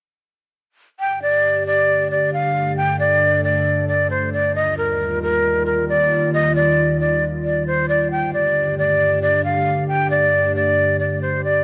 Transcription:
0.99 ambient pad G2 D3 A3 G4, flute G5
1.22 flute D5
1.66 flute D5
2.11 flute D5
2.33 flute F5
2.77 ambient pad A4, flute G5
2.99 flute D5
3.44 flute D5
3.88 flute D5
4.10 flute C5
4.33 flute D5
4.55 ambient pad D#2 D#3 G3 F4, flute D#5
4.77 flute A#4
5.22 flute A#4
5.66 flute A#4
5.89 flute D5
6.34 flute D#5
6.55 flute D5
7.00 flute D5
7.44 flute D5
7.67 flute C5
7.89 flute D5
8.11 ambient pad G2 D3 A3 G4, flute G5
8.33 flute D5
8.78 flute D5
9.22 flute D5
9.44 flute F5
9.88 flute G5
10.10 flute D5
10.55 flute D5
10.99 flute D5
11.22 flute C5
11.44 flute D5

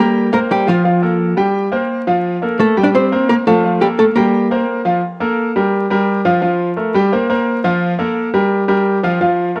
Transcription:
Already playing: grand piano G3 G4 G5
0.00 hollow-body jazz guitar A#3 A#4
0.33 grand piano A#3 A#4 C5, hollow-body jazz guitar A#3 A#4
0.51 hollow-body jazz guitar G3 G4
0.67 grand piano F3 F4 F5, hollow-body jazz guitar F3 F4
0.84 grand piano F3 F4 F5
1.02 grand piano A#3 A4 A#4
1.37 grand piano G3 G4 G5
1.72 grand piano A#3 A#4 C5
2.07 grand piano F3 F4 F5
2.42 grand piano A#3 A4 A#4
2.60 hollow-body jazz guitar A3 A4
2.77 grand piano G3 G4 G5
2.83 hollow-body jazz guitar D4 D5
2.94 hollow-body jazz guitar C4 C5
3.12 grand piano A#3 A#4 C5
3.29 hollow-body jazz guitar A#3 A#4
3.47 grand piano F3 F4 F5, hollow-body jazz guitar A3 A4
3.64 grand piano F3 F4 F5
3.81 hollow-body jazz guitar G3 G4, grand piano A#3 A4 A#4
3.99 hollow-body jazz guitar A3 A4
4.16 grand piano G3 G4 G5, hollow-body jazz guitar A#3 A#4
4.51 grand piano A#3 A#4 C5
4.85 grand piano F3 F4 F5
5.20 grand piano A#3 A4 A#4
5.56 grand piano G3 G4 A#4
5.90 grand piano G3 G4 A#4
6.25 grand piano F3 F4 F5
6.42 grand piano F3 F4 F5
6.76 grand piano A3 A4 A#4
6.94 grand piano G3 G4 G5
7.12 grand piano A#3 A#4 C5
7.29 grand piano A#3 A#4 C5
7.64 grand piano F3 F4 F5
7.99 grand piano A#3 A4 A#4
8.34 grand piano G3 G4 A#4
8.68 grand piano G3 G4 A#4
9.03 grand piano F3 F4 F5
9.21 grand piano F3 F4 F5
9.55 grand piano A3 A4 A#4

